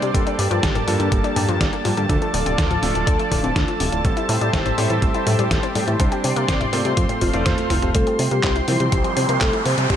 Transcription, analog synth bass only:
0.02 0.11 C3 medium
0.14 0.23 G1 loud
0.39 0.48 G2 medium
0.51 0.60 G2 medium
0.63 0.81 G1 medium
0.88 0.97 G2 medium
1.00 1.09 G2 medium
1.12 1.21 G1 medium
1.36 1.45 G2 medium
1.49 1.58 G2 medium
1.61 1.70 G1 medium
1.85 1.94 G2 medium
1.97 2.06 G2 medium
2.09 2.19 D2 loud
2.34 2.43 D1 medium
2.46 2.55 D1 medium
2.58 2.76 D2 medium
2.83 2.92 D1 medium
2.95 3.04 D1 medium
3.07 3.16 D2 medium
3.31 3.41 D1 medium
3.43 3.53 D1 loud
3.56 3.65 D2 medium
3.81 3.89 D1 loud
3.93 4.02 D1 medium
4.05 4.14 A1 loud
4.29 4.38 A2 medium
4.41 4.50 A2 medium
4.53 4.72 A1 medium
4.78 4.87 A2 medium
4.90 4.99 A2 medium
5.02 5.11 A1 medium
5.27 5.36 A2 medium
5.39 5.48 A2 medium
5.51 5.60 A1 medium
5.75 5.84 A2 loud
5.88 5.97 A2 loud
6.00 6.09 C2 loud
6.24 6.33 C3 medium
6.36 6.45 C3 medium
6.49 6.67 C2 medium
6.73 6.82 C3 medium
6.85 6.94 C3 medium
6.97 7.06 F2 medium
7.22 7.31 F1 medium
7.34 7.43 F1 loud
7.46 7.55 F2 medium
7.71 7.80 F1 medium
7.83 7.92 F1 loud
7.95 8.04 C2 loud
8.19 8.28 C3 medium
8.31 8.40 C3 medium
8.44 8.62 C2 medium
8.68 8.77 C3 medium
8.80 8.89 C3 medium
8.92 9.02 C2 medium
9.17 9.26 C3 medium
9.29 9.38 C3 medium
9.41 9.50 C2 medium
9.66 9.75 C3 medium
9.78 9.87 C3 loud
9.90 9.96 C2 loud

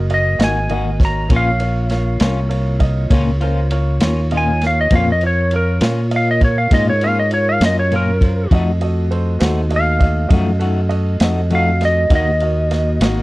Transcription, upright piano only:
0.09 0.32 F#4 medium
0.09 0.33 A#4 soft
0.09 0.33 D#5 medium
0.39 0.62 F#4 soft
0.39 0.63 A#4 soft
0.39 0.63 D#5 medium
0.69 0.93 F#4 medium
0.69 0.93 A#4 soft
0.69 0.93 D#5 medium
0.99 1.23 F#4 soft
0.99 1.23 A#4 soft
0.99 1.23 C#5 medium
1.29 1.52 F4 medium
1.29 1.52 A#4 medium
1.29 1.53 C#5 medium
1.59 1.83 F4 soft
1.59 1.83 A#4 soft
1.59 1.83 C#5 medium
1.90 2.13 F4 medium
1.90 2.13 A#4 soft
1.90 2.13 C#5 medium
2.21 2.43 F4 medium
2.21 2.44 A#4 medium
2.21 2.44 C#5 medium
2.49 2.73 F4 medium
2.49 2.73 A#4 medium
2.49 2.73 C#5 medium
2.79 3.03 F4 medium
2.79 3.03 A#4 medium
2.79 3.03 D#5 medium
3.10 3.33 F4 medium
3.10 3.33 A#4 medium
3.10 3.33 C#5 medium
3.42 3.64 F4 medium
3.42 3.64 A#4 medium
3.42 3.64 C5 medium
3.71 3.94 F4 medium
3.71 3.94 A#4 medium
3.71 3.94 C#5 medium
4.02 4.24 F4 medium
4.02 4.24 A#4 medium
4.02 4.25 C#5 medium
4.31 4.54 F4 medium
4.31 4.54 A#4 soft
4.31 4.54 D#5 medium
4.63 4.84 F4 soft
4.63 4.85 A#4 soft
4.63 4.85 C#5 medium
4.92 5.14 F4 medium
4.92 5.15 A#4 medium
4.92 5.15 C#5 medium
5.23 5.45 F4 soft
5.23 5.45 A#4 soft
5.23 5.45 C#5 medium
5.52 5.74 F4 soft
5.52 5.75 A#4 soft
5.52 5.75 C#5 medium
5.82 6.04 F4 soft
5.82 6.04 A#4 soft
5.82 6.05 C#5 medium
6.11 6.34 F4 soft
6.11 6.34 A#4 soft
6.11 6.34 D#5 medium
6.41 6.64 F4 soft
6.41 6.64 A#4 soft
6.41 6.64 C#5 medium
6.72 6.94 F4 soft
6.72 6.94 A#4 soft
6.72 6.95 D#5 medium
7.02 7.24 F4 soft
7.02 7.25 A#4 soft
7.02 7.25 C#5 medium
7.32 7.54 F4 medium
7.32 7.55 A#4 soft
7.32 7.55 C#5 medium
7.62 7.84 F4 soft
7.62 7.85 A#4 soft
7.62 7.85 D#5 medium
7.93 8.14 F4 medium
7.93 8.15 A#4 soft
7.93 8.15 C#5 medium
8.21 8.44 F4 soft
8.21 8.44 A#4 soft
8.21 8.44 C5 soft
8.51 8.74 F#4 medium
8.51 8.74 A4 medium
8.51 8.74 D#5 medium
8.81 9.04 F#4 medium
8.81 9.04 A4 medium
8.81 9.04 D#5 medium
9.11 9.34 F#4 medium
9.11 9.34 A4 medium
9.11 9.34 C5 medium
9.39 9.63 F#4 medium
9.39 9.63 A4 medium
9.39 9.63 C5 medium
9.69 9.93 F#4 medium
9.69 9.94 A4 soft
9.69 9.94 D#5 medium
9.99 10.23 F#4 medium
9.99 10.23 A4 soft
9.99 10.23 D#5 medium
10.28 10.52 F#4 medium
10.28 10.53 A4 soft
10.28 10.53 D#5 medium
10.59 10.83 F#4 medium
10.59 10.83 A4 medium
10.59 10.83 F#5 medium
10.89 11.13 F#4 medium
10.89 11.13 A4 medium
10.89 11.13 D#5 medium
11.20 11.43 F#4 soft
11.20 11.44 A4 medium
11.20 11.44 D#5 medium
11.50 11.73 F#4 medium
11.50 11.73 A4 medium
11.50 11.74 F#5 medium
11.81 12.04 F#4 soft
11.81 12.04 A4 soft
11.81 12.04 D#5 soft
12.10 12.33 F#4 medium
12.10 12.34 A#4 medium
12.10 12.34 D#5 medium
12.41 12.64 F#4 medium
12.41 12.64 A#4 soft
12.41 12.64 D#5 medium
12.70 12.93 F#4 soft
12.70 12.94 A#4 soft
12.70 12.94 D#5 medium
13.01 13.22 F#4 medium
13.01 13.22 A#4 medium
13.01 13.22 D#5 medium

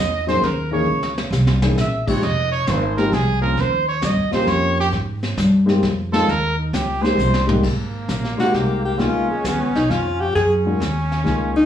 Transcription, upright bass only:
0.00 0.41 E2 medium
0.42 0.86 D#2 medium
0.86 1.30 C#2 medium
1.30 1.75 C2 loud
1.75 2.20 A#1 medium
2.22 2.66 F1 medium
2.67 3.11 G#1 loud
3.12 3.56 C2 medium
3.57 4.01 D#2 medium
4.02 4.18 G2 loud
4.16 4.31 D#2 medium
4.32 4.46 C#2 medium
4.47 4.91 F2 loud
4.92 5.36 G#2 medium
5.37 5.81 G2 loud
5.83 6.27 F2 medium
6.28 6.72 D#2 loud
6.73 7.17 C#2 medium
7.18 7.62 C2 loud
7.63 8.07 G#1 medium
8.08 8.37 A#1 medium
8.38 muted upright bass stroke soft
8.53 8.97 C2 medium
8.99 9.27 C#2 medium
9.28 muted upright bass stroke soft
9.44 9.58 D#2 medium
9.58 9.73 C#2 medium
9.73 9.88 B1 medium
9.90 10.33 F2 medium
10.35 10.79 F#2 medium
10.80 11.24 D#2 medium
11.25 11.65 C#2 medium

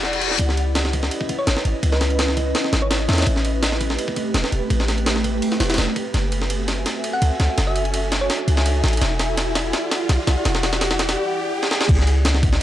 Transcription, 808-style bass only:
0.00 0.38 E1 medium
0.39 1.10 C#2 loud
1.47 1.56 G#1 medium
1.65 1.74 G#1 medium
1.83 2.53 C#2 loud
2.73 3.07 G#1 medium
3.09 3.25 E2 loud
3.27 3.97 A1 loud
4.34 4.43 E1 loud
4.52 4.61 E1 medium
4.70 5.41 A1 loud
5.60 5.78 E1 medium
5.78 5.87 E1 medium
6.14 6.85 F#1 loud
7.22 7.30 C#2 loud
7.40 7.48 C#2 medium
7.58 8.28 F#1 loud
8.48 8.82 C#2 medium
8.84 9.00 A1 loud
9.01 9.72 E1 loud
10.09 10.18 B1 loud
10.27 10.36 B1 medium
10.45 11.16 E1 loud
11.89 12.60 C#2 loud

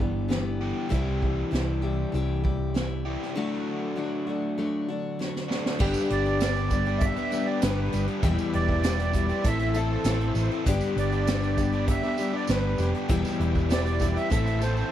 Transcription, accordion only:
6.12 7.05 D5 loud
6.98 7.47 E5 loud
7.46 7.61 D5 medium
7.61 8.04 B4 medium
8.55 9.48 D5 loud
9.46 9.77 E5 loud
9.76 10.33 A4 medium
10.98 11.85 D5 medium
11.89 12.36 E5 loud
12.36 12.50 D5 loud
12.50 12.92 B4 medium
13.71 14.18 D5 loud
14.16 14.29 E5 loud
14.31 14.62 E5 loud
14.63 14.92 C5 medium

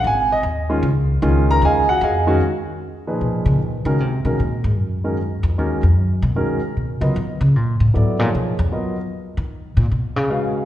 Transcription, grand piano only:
0.07 0.31 G#5 loud
0.32 0.40 D#5 loud
0.70 0.82 D#3 medium
0.70 0.82 G#3 medium
0.70 0.82 C#4 medium
0.70 0.82 F4 medium
1.22 1.82 D#3 medium
1.22 1.83 G#3 medium
1.22 1.83 C#4 medium
1.22 1.83 F4 medium
1.51 1.63 A#4 medium
1.51 1.63 A#5 loud
1.65 1.89 G#4 medium
1.65 1.89 D#5 medium
1.65 1.89 F5 medium
1.65 1.88 G#5 medium
1.89 2.02 F#4 medium
1.89 2.02 F#5 loud
2.04 2.33 G#4 medium
2.04 2.33 D#5 medium
2.04 2.33 F5 medium
2.04 2.33 G#5 medium
2.27 2.40 D#3 medium
2.27 2.40 G#3 medium
2.27 2.40 C#4 medium
2.27 2.40 F#4 medium
3.07 3.58 A#2 medium
3.07 3.57 F3 medium
3.07 3.57 D#4 medium
3.07 3.58 G#4 soft
3.07 3.58 B4 medium
3.86 3.98 D#3 medium
3.86 3.98 G#3 medium
3.86 3.98 C#4 medium
3.86 3.98 F#4 soft
3.86 3.98 A#4 medium
4.25 4.38 D#3 medium
4.25 4.38 G#3 medium
4.25 4.38 C#4 medium
4.25 4.38 F#4 soft
4.25 4.38 A#4 medium
5.04 5.17 D#3 soft
5.04 5.16 G#3 soft
5.04 5.17 C#4 soft
5.04 5.17 F#4 soft
5.04 5.17 A#4 medium
5.58 5.81 D#3 soft
5.58 5.81 G#3 medium
5.58 5.81 C#4 medium
5.58 5.81 F#4 soft
5.58 5.81 A#4 medium
6.36 6.59 D#3 medium
6.36 6.59 G#3 medium
6.36 6.59 C#4 medium
6.36 6.59 F#4 soft
6.36 6.59 A#4 medium
7.01 7.13 F#3 soft
7.01 7.14 B3 soft
7.01 7.14 F4 soft
7.01 7.14 A#4 medium
7.01 7.14 D#5 medium
7.94 8.17 F#3 soft
7.94 8.17 B3 soft
7.94 8.17 E4 soft
7.94 8.17 A4 soft
7.94 8.17 D5 medium
8.19 8.53 F3 soft
8.19 8.54 A#3 soft
8.19 8.54 D#4 soft
8.19 8.54 G#4 soft
8.19 8.54 C#5 soft
8.72 8.95 F#3 soft
8.72 8.95 B3 soft
8.72 8.95 F4 soft
8.72 8.96 A#4 soft
8.72 8.96 D#5 medium
10.30 10.65 G#3 medium
10.30 10.65 C#4 soft
10.30 10.65 F#4 soft
10.30 10.65 B4 soft
10.30 10.65 F5 medium

